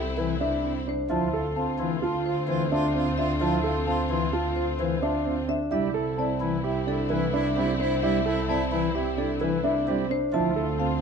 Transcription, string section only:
Already playing: C4 E4
1.10 C4 F4
5.72 C4 E4
10.33 C4 F4

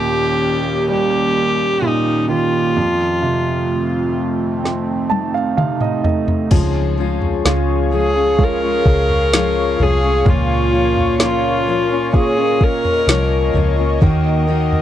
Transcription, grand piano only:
Already playing: D#2 A#2
0.89 G3
1.82 A#2
2.29 D#3
2.76 F2
3.23 C3
4.64 C4
5.10 A5
5.34 F5
5.57 C3 F5
5.81 D#5
6.04 A3 D#5
6.52 F3
7.45 G#3 C#4 F4
8.38 G#3 C#4 F4
10.25 A#2
11.19 A#3 C#4 F4
12.13 A#3 C#4 F4
14.02 D#3

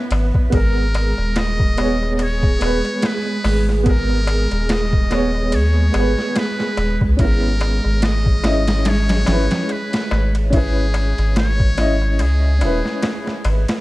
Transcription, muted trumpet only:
Already playing: B4
0.55 A#4
1.38 D#5
2.16 D#5
2.23 C#5
3.06 B4
3.89 A#4
4.73 D#5
5.55 C#5
6.38 B4
7.22 A#4
8.04 D#5
8.89 C#5
9.72 B4
10.55 G#4
11.38 C#5
12.22 G#4

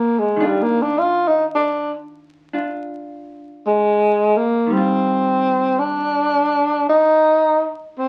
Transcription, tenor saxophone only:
Already playing: A#3
0.19 G#3
0.45 G3
0.62 A#3
0.82 D4
0.99 F4
1.28 D#4
1.55 D4
3.66 G#3
4.37 A#3
4.73 C4
5.79 D4
6.89 D#4
7.97 C4

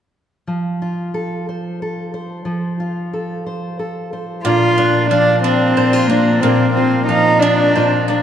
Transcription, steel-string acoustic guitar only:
0.47 F3
0.82 F4
1.14 A4
1.49 C5
1.82 A4
2.14 C5
2.45 F3
2.80 F4
3.13 A4
3.46 C5
3.79 A4
4.13 C5
4.45 A#2 D4
4.79 D4
5.11 F3 D4
5.77 A#2 D4
5.93 F4
6.11 D4
6.43 A#2 A#4
6.77 F4
7.08 F3
7.76 A#2 F4
8.10 D4

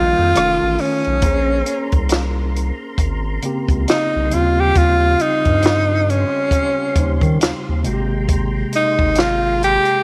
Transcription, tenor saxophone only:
Already playing: F4
0.81 C#4
3.90 D#4
4.34 F4
4.60 G4
4.77 F4
5.22 D#4
6.10 C#4
8.76 D#4
9.20 F4
9.64 G4

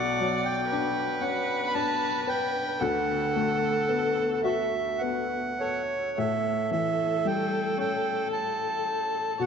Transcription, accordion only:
Already playing: F#5
0.45 G5
1.21 F#5
1.66 B5
1.74 A5
2.29 G5
2.80 F#5
4.33 F#5
4.43 E5
4.98 F#5
5.60 C#5
6.18 E5
6.72 E5
7.27 G5
7.80 G5
8.32 A5
9.41 F#5

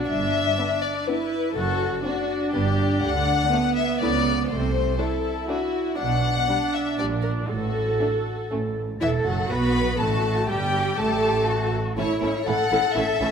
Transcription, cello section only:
0.09 G2
1.55 F#2
2.53 G2
3.03 D3
4.01 C#3
4.50 C3
5.99 B2
6.98 A#2
7.49 A2
8.51 A2
9.01 A4
9.51 F#4
10.00 F#4
10.50 G4
11.49 F#4
11.98 E4
12.47 A4

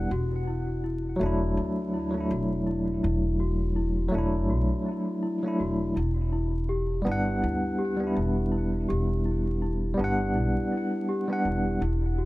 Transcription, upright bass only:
0.11 E1
1.21 E1
1.57 D2
2.31 E1
3.04 E1
4.14 E1
4.51 B1
5.60 E1
5.97 E1
7.06 G1
7.43 D2
8.16 E1
8.90 E1
9.99 G1
10.35 B1
11.45 E1
11.82 E1

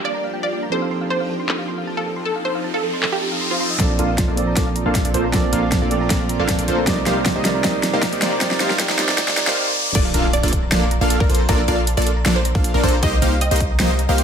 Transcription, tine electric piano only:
Already playing: G3 D4 F4 A4 A#4
0.70 F3 C4 D#4 G4
0.74 A4
3.78 A#2 F3 C4 A4 D5
4.36 A#2 F3 C4 A4 D5
5.32 A#2 F3 C4 A4 D5
5.90 A#2 F3 C4 A4 D5
6.85 C3 G3 D#4 A#4 D5
7.44 C3 G3 D#4 A#4 D5
8.39 C3 G3 D#4 A#4
8.43 D5
8.98 C3 G3 D#4 A#4 D5

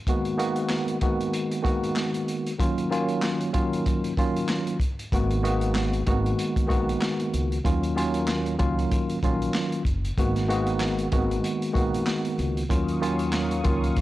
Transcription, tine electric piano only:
0.08 D#3 G#3 A#3 B3 F#4
0.37 D#3 G#3 A#3 B3 F#4
1.01 D#3 G#3 A#3 B3 F#4
1.62 D#3 G#3 A#3 B3 F#4
2.59 D#3 F#3 A#3 C#4 F4
2.90 D#3 F#3 A#3 C#4 F4
3.53 D#3 F#3 A#3 C#4 F4
4.17 D#3 F#3 A#3 C#4 F4
5.13 D#3 G#3 A#3 B3 F#4
5.43 D#3 G#3 A#3 B3 F#4
6.07 D#3 G#3 A#3 B3 F#4
6.67 D#3 G#3 A#3 B3 F#4
7.64 D#3 F#3 A#3 C#4 F4
7.96 D#3 F#3 A#3 C#4 F4
8.58 D#3 F#3 A#3 C#4 F4
9.23 D#3 F#3 A#3 C#4 F4
10.18 D#3 G#3 A#3 B3 F#4
10.48 D#3 G#3 A#3 B3 F#4
11.12 D#3 G#3 A#3 B3 F#4
11.73 D#3 G#3 A#3 B3 F#4
12.69 D#3 F#3 A#3 C#4 F4
13.01 D#3 F#3 A#3 C#4 F4
13.63 D#3 F#3 A#3 C#4 F4

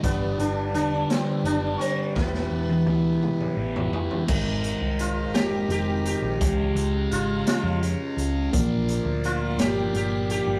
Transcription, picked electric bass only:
0.04 G1
0.38 G1
0.74 E1
1.44 F#1
2.16 E1
2.51 E1
2.86 D2
3.57 A1
4.28 G#1
4.81 C2
5.34 F1
5.69 F1
6.22 A#1
6.41 C#2
6.75 C#2
7.11 G#1
7.64 F2
8.17 C#2
8.53 A#1
9.05 D2
9.58 G1
9.93 G1
10.47 G1

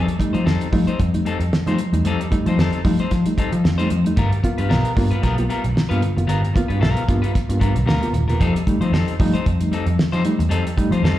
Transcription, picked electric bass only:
0.20 muted picked electric bass stroke
0.34 F3
0.46 F2
0.73 F3
1.00 F2
1.40 F2
1.67 F3
1.93 E2
2.05 F2
2.32 muted picked electric bass stroke
2.46 F3
2.58 F2
2.85 F3
3.11 F3
3.38 muted picked electric bass stroke
3.53 F3
3.65 F2
3.91 F2
4.17 G1
4.44 muted picked electric bass stroke
4.59 G2
4.70 B1
4.97 G2
5.24 B1
5.65 B1
5.91 G2
6.17 F#1
6.28 G1
6.55 muted picked electric bass stroke
6.70 G2
6.81 B1
7.09 G2
7.49 G2
7.61 G2
7.76 B1
7.86 D2
8.13 D#1
8.28 E1
8.41 F2
8.67 muted picked electric bass stroke
8.81 F3
8.92 F2
9.20 F3
9.47 F2
9.86 F2
10.13 F3
10.39 E2
10.50 F2
10.78 muted picked electric bass stroke
10.91 F3
11.03 F2

